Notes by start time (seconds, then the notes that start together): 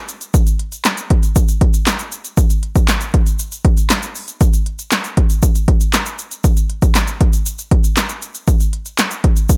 0.09 closed hi-hat, shaker
0.21 closed hi-hat, shaker
0.34 kick, closed hi-hat, shaker
0.47 closed hi-hat, shaker
0.59 closed hi-hat
0.72 closed hi-hat, shaker
0.85 snare, clap, closed hi-hat, shaker
0.97 closed hi-hat, shaker
1.10 kick, closed hi-hat
1.23 closed hi-hat, shaker
1.36 kick, closed hi-hat, shaker
1.48 closed hi-hat, shaker
1.61 kick, closed hi-hat
1.74 closed hi-hat, shaker
1.86 snare, clap, closed hi-hat, shaker
1.99 closed hi-hat, shaker
2.12 closed hi-hat, shaker
2.25 closed hi-hat, shaker
2.37 kick, closed hi-hat, shaker
2.50 closed hi-hat, shaker
2.63 closed hi-hat
2.76 kick, closed hi-hat, shaker
2.88 snare, clap, closed hi-hat, shaker
3.01 closed hi-hat, shaker
3.14 kick, closed hi-hat
3.27 closed hi-hat, shaker
3.39 closed hi-hat, shaker
3.52 closed hi-hat, shaker
3.65 kick, closed hi-hat
3.77 closed hi-hat, shaker
3.90 snare, clap, closed hi-hat, shaker
4.03 closed hi-hat, shaker
4.15 open hi-hat, shaker
4.28 closed hi-hat, shaker
4.41 kick, closed hi-hat, shaker
4.54 closed hi-hat, shaker
4.66 closed hi-hat
4.79 closed hi-hat, shaker
4.92 snare, clap, closed hi-hat, shaker
5.04 closed hi-hat, shaker
5.17 kick, closed hi-hat
5.30 closed hi-hat, shaker
5.42 kick, closed hi-hat, shaker
5.55 closed hi-hat, shaker
5.68 kick, closed hi-hat
5.81 closed hi-hat, shaker
5.93 snare, clap, closed hi-hat, shaker
6.06 closed hi-hat, shaker
6.19 closed hi-hat, shaker
6.31 closed hi-hat, shaker
6.44 kick, closed hi-hat, shaker
6.57 closed hi-hat, shaker
6.70 closed hi-hat
6.82 kick, closed hi-hat, shaker
6.95 snare, clap, closed hi-hat, shaker
7.07 closed hi-hat, shaker
7.21 kick, closed hi-hat
7.33 closed hi-hat, shaker
7.46 closed hi-hat, shaker
7.59 closed hi-hat, shaker
7.71 kick, closed hi-hat
7.84 closed hi-hat, shaker
7.97 snare, clap, closed hi-hat, shaker
8.09 closed hi-hat, shaker
8.22 closed hi-hat, shaker
8.35 closed hi-hat, shaker
8.48 kick, closed hi-hat, shaker
8.60 closed hi-hat, shaker
8.73 closed hi-hat
8.86 closed hi-hat, shaker
8.98 snare, clap, closed hi-hat, shaker
9.11 closed hi-hat, shaker
9.24 kick, closed hi-hat
9.37 closed hi-hat, shaker
9.49 kick, closed hi-hat, shaker